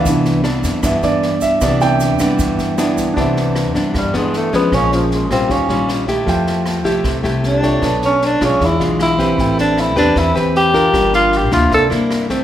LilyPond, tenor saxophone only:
\new Staff \with { instrumentName = "Tenor saxophone" } { \time 4/4 \key c \major \tempo 4 = 154 r1 | r1 | r2 g8 aes8 a8 b8 | des'8 f8 aes8 c'8 des'4 r4 |
r2. d'4~ | d'8 cis'8 d'8 cis'8 e'8 r8 e'4~ | e'8 d'8 e'8 d'8 e'8 r8 g'4~ | g'8 f'8 g'8 f'8 a'8 r4. | }